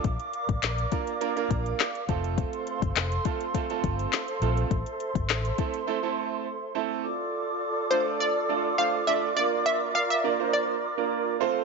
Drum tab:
HH |xxxxxxxxxxxxxxxx|xxxxxxxxxxxxxxxx|xxxxxxxx--------|----------------|
CP |----x-------x---|----x-------x---|----x-----------|----------------|
SD |----o-------o---|----o-------o---|----o-----------|----------------|
BD |o--o--o---o---o-|o--o--o-o-o-----|o--o--o---------|----------------|

HH |----------------|
CP |----------------|
SD |----------------|
BD |----------------|